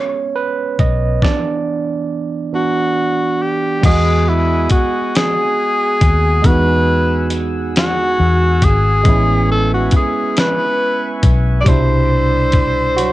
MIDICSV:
0, 0, Header, 1, 7, 480
1, 0, Start_track
1, 0, Key_signature, 4, "major"
1, 0, Tempo, 869565
1, 677, Time_signature, 6, 3, 24, 8
1, 7245, End_track
2, 0, Start_track
2, 0, Title_t, "Tonewheel organ"
2, 0, Program_c, 0, 16
2, 2113, Note_on_c, 0, 68, 64
2, 2113, Note_on_c, 0, 80, 58
2, 2114, Note_on_c, 0, 87, 74
2, 2118, Note_on_c, 0, 78, 58
2, 3541, Note_off_c, 0, 87, 0
2, 3559, Note_on_c, 0, 88, 66
2, 4973, Note_off_c, 0, 68, 0
2, 4973, Note_off_c, 0, 80, 0
2, 4975, Note_off_c, 0, 78, 0
2, 4984, Note_off_c, 0, 88, 0
2, 4995, Note_on_c, 0, 71, 66
2, 4995, Note_on_c, 0, 85, 77
2, 4997, Note_on_c, 0, 76, 57
2, 4998, Note_on_c, 0, 80, 59
2, 6421, Note_off_c, 0, 71, 0
2, 6422, Note_off_c, 0, 85, 0
2, 6423, Note_off_c, 0, 76, 0
2, 6423, Note_off_c, 0, 80, 0
2, 6433, Note_on_c, 0, 83, 57
2, 6435, Note_on_c, 0, 74, 67
2, 6435, Note_on_c, 0, 88, 73
2, 6437, Note_on_c, 0, 84, 64
2, 7245, Note_off_c, 0, 74, 0
2, 7245, Note_off_c, 0, 83, 0
2, 7245, Note_off_c, 0, 84, 0
2, 7245, Note_off_c, 0, 88, 0
2, 7245, End_track
3, 0, Start_track
3, 0, Title_t, "Tenor saxophone"
3, 0, Program_c, 1, 66
3, 1407, Note_on_c, 1, 66, 97
3, 1888, Note_on_c, 1, 67, 89
3, 1897, Note_off_c, 1, 66, 0
3, 2123, Note_off_c, 1, 67, 0
3, 2126, Note_on_c, 1, 68, 102
3, 2367, Note_on_c, 1, 64, 92
3, 2375, Note_off_c, 1, 68, 0
3, 2601, Note_off_c, 1, 64, 0
3, 2604, Note_on_c, 1, 66, 87
3, 2851, Note_on_c, 1, 68, 110
3, 2860, Note_off_c, 1, 66, 0
3, 3566, Note_on_c, 1, 71, 117
3, 3574, Note_off_c, 1, 68, 0
3, 4101, Note_off_c, 1, 71, 0
3, 4293, Note_on_c, 1, 66, 106
3, 4772, Note_on_c, 1, 68, 105
3, 4780, Note_off_c, 1, 66, 0
3, 5244, Note_off_c, 1, 68, 0
3, 5251, Note_on_c, 1, 69, 110
3, 5356, Note_off_c, 1, 69, 0
3, 5375, Note_on_c, 1, 66, 86
3, 5478, Note_off_c, 1, 66, 0
3, 5499, Note_on_c, 1, 68, 85
3, 5734, Note_on_c, 1, 71, 108
3, 5742, Note_off_c, 1, 68, 0
3, 6205, Note_off_c, 1, 71, 0
3, 6408, Note_on_c, 1, 74, 93
3, 6449, Note_on_c, 1, 72, 123
3, 6457, Note_off_c, 1, 74, 0
3, 7245, Note_off_c, 1, 72, 0
3, 7245, End_track
4, 0, Start_track
4, 0, Title_t, "Tine electric piano"
4, 0, Program_c, 2, 4
4, 0, Control_c, 2, 64, 127
4, 0, Note_on_c, 2, 56, 56
4, 0, Note_on_c, 2, 59, 51
4, 0, Note_on_c, 2, 61, 64
4, 0, Note_on_c, 2, 73, 88
4, 197, Note_on_c, 2, 71, 96
4, 211, Note_off_c, 2, 73, 0
4, 441, Note_on_c, 2, 75, 102
4, 444, Note_off_c, 2, 71, 0
4, 672, Note_on_c, 2, 52, 58
4, 675, Note_off_c, 2, 59, 0
4, 675, Note_on_c, 2, 59, 56
4, 678, Note_on_c, 2, 74, 95
4, 679, Note_on_c, 2, 62, 65
4, 683, Note_off_c, 2, 56, 0
4, 683, Control_c, 2, 64, 0
4, 686, Note_off_c, 2, 61, 0
4, 686, Note_off_c, 2, 75, 0
4, 797, Control_c, 2, 64, 127
4, 1389, Note_off_c, 2, 52, 0
4, 1392, Note_off_c, 2, 59, 0
4, 1394, Note_off_c, 2, 62, 0
4, 1395, Note_on_c, 2, 52, 50
4, 1399, Note_on_c, 2, 59, 47
4, 1401, Note_on_c, 2, 62, 53
4, 1614, Note_off_c, 2, 52, 0
4, 1616, Note_off_c, 2, 59, 0
4, 1617, Note_off_c, 2, 62, 0
4, 1855, Note_off_c, 2, 74, 0
4, 2101, Note_on_c, 2, 55, 59
4, 2112, Note_on_c, 2, 59, 67
4, 2124, Control_c, 2, 64, 0
4, 2125, Note_on_c, 2, 75, 62
4, 2135, Note_on_c, 2, 66, 87
4, 2136, Note_on_c, 2, 56, 68
4, 2145, Note_off_c, 2, 55, 0
4, 2229, Control_c, 2, 64, 127
4, 3533, Note_off_c, 2, 59, 0
4, 3539, Note_off_c, 2, 56, 0
4, 3539, Note_off_c, 2, 75, 0
4, 3544, Note_off_c, 2, 66, 0
4, 3545, Note_on_c, 2, 56, 72
4, 3556, Note_on_c, 2, 59, 62
4, 3566, Note_on_c, 2, 63, 66
4, 3578, Note_on_c, 2, 66, 77
4, 4969, Note_off_c, 2, 56, 0
4, 4975, Note_off_c, 2, 59, 0
4, 4979, Note_off_c, 2, 63, 0
4, 4985, Note_off_c, 2, 66, 0
4, 4987, Note_on_c, 2, 56, 73
4, 4998, Note_on_c, 2, 59, 63
4, 5005, Control_c, 2, 64, 0
4, 5008, Note_on_c, 2, 61, 64
4, 5020, Note_on_c, 2, 64, 88
4, 5105, Control_c, 2, 64, 127
4, 6410, Note_off_c, 2, 56, 0
4, 6415, Note_off_c, 2, 59, 0
4, 6420, Note_off_c, 2, 61, 0
4, 6426, Note_off_c, 2, 64, 0
4, 6426, Note_on_c, 2, 55, 81
4, 6437, Note_on_c, 2, 47, 64
4, 6445, Control_c, 2, 64, 0
4, 6449, Note_on_c, 2, 62, 68
4, 6460, Note_on_c, 2, 64, 85
4, 6551, Control_c, 2, 64, 127
4, 7158, Note_on_c, 2, 66, 95
4, 7170, Note_on_c, 2, 54, 72
4, 7245, Note_off_c, 2, 47, 0
4, 7245, Note_off_c, 2, 54, 0
4, 7245, Note_off_c, 2, 55, 0
4, 7245, Note_off_c, 2, 62, 0
4, 7245, Note_off_c, 2, 64, 0
4, 7245, Note_off_c, 2, 66, 0
4, 7245, End_track
5, 0, Start_track
5, 0, Title_t, "Fingered electric bass"
5, 0, Program_c, 3, 33
5, 441, Note_on_c, 3, 35, 85
5, 657, Note_off_c, 3, 35, 0
5, 2122, Note_on_c, 3, 40, 113
5, 2577, Note_off_c, 3, 40, 0
5, 3324, Note_on_c, 3, 39, 87
5, 3538, Note_off_c, 3, 39, 0
5, 3562, Note_on_c, 3, 40, 120
5, 4497, Note_off_c, 3, 40, 0
5, 4525, Note_on_c, 3, 40, 91
5, 4764, Note_on_c, 3, 32, 90
5, 4773, Note_off_c, 3, 40, 0
5, 4979, Note_off_c, 3, 32, 0
5, 5001, Note_on_c, 3, 33, 113
5, 5457, Note_off_c, 3, 33, 0
5, 6205, Note_on_c, 3, 35, 100
5, 6419, Note_off_c, 3, 35, 0
5, 6443, Note_on_c, 3, 36, 119
5, 7245, Note_off_c, 3, 36, 0
5, 7245, End_track
6, 0, Start_track
6, 0, Title_t, "Muted fingered electric bass strokes"
6, 2604, Note_on_c, 9, 29, 51
6, 2659, Note_off_c, 9, 29, 0
6, 5483, Note_on_c, 9, 29, 51
6, 5538, Note_off_c, 9, 29, 0
6, 7245, End_track
7, 0, Start_track
7, 0, Title_t, "Drums"
7, 437, Note_on_c, 9, 36, 95
7, 437, Note_on_c, 9, 42, 71
7, 492, Note_off_c, 9, 36, 0
7, 492, Note_off_c, 9, 42, 0
7, 675, Note_on_c, 9, 36, 99
7, 688, Note_on_c, 9, 38, 89
7, 730, Note_off_c, 9, 36, 0
7, 743, Note_off_c, 9, 38, 0
7, 2116, Note_on_c, 9, 36, 127
7, 2117, Note_on_c, 9, 49, 112
7, 2118, Note_on_c, 9, 42, 80
7, 2172, Note_off_c, 9, 36, 0
7, 2172, Note_off_c, 9, 49, 0
7, 2173, Note_off_c, 9, 42, 0
7, 2592, Note_on_c, 9, 42, 65
7, 2598, Note_on_c, 9, 36, 92
7, 2647, Note_off_c, 9, 42, 0
7, 2653, Note_off_c, 9, 36, 0
7, 2844, Note_on_c, 9, 42, 69
7, 2851, Note_on_c, 9, 38, 119
7, 2899, Note_off_c, 9, 42, 0
7, 2906, Note_off_c, 9, 38, 0
7, 3319, Note_on_c, 9, 36, 99
7, 3319, Note_on_c, 9, 42, 81
7, 3374, Note_off_c, 9, 42, 0
7, 3375, Note_off_c, 9, 36, 0
7, 3556, Note_on_c, 9, 36, 126
7, 3558, Note_on_c, 9, 42, 83
7, 3612, Note_off_c, 9, 36, 0
7, 3613, Note_off_c, 9, 42, 0
7, 4031, Note_on_c, 9, 42, 64
7, 4086, Note_off_c, 9, 42, 0
7, 4283, Note_on_c, 9, 42, 70
7, 4289, Note_on_c, 9, 38, 114
7, 4338, Note_off_c, 9, 42, 0
7, 4345, Note_off_c, 9, 38, 0
7, 4758, Note_on_c, 9, 42, 80
7, 4759, Note_on_c, 9, 36, 100
7, 4813, Note_off_c, 9, 42, 0
7, 4814, Note_off_c, 9, 36, 0
7, 4995, Note_on_c, 9, 42, 72
7, 4996, Note_on_c, 9, 36, 127
7, 5051, Note_off_c, 9, 36, 0
7, 5051, Note_off_c, 9, 42, 0
7, 5471, Note_on_c, 9, 42, 66
7, 5478, Note_on_c, 9, 36, 83
7, 5526, Note_off_c, 9, 42, 0
7, 5533, Note_off_c, 9, 36, 0
7, 5723, Note_on_c, 9, 42, 68
7, 5729, Note_on_c, 9, 38, 105
7, 5778, Note_off_c, 9, 42, 0
7, 5785, Note_off_c, 9, 38, 0
7, 6199, Note_on_c, 9, 42, 85
7, 6200, Note_on_c, 9, 36, 100
7, 6254, Note_off_c, 9, 42, 0
7, 6255, Note_off_c, 9, 36, 0
7, 6437, Note_on_c, 9, 36, 127
7, 6438, Note_on_c, 9, 42, 80
7, 6493, Note_off_c, 9, 36, 0
7, 6493, Note_off_c, 9, 42, 0
7, 6912, Note_on_c, 9, 42, 57
7, 6920, Note_on_c, 9, 36, 83
7, 6968, Note_off_c, 9, 42, 0
7, 6975, Note_off_c, 9, 36, 0
7, 7166, Note_on_c, 9, 42, 67
7, 7221, Note_off_c, 9, 42, 0
7, 7245, End_track
0, 0, End_of_file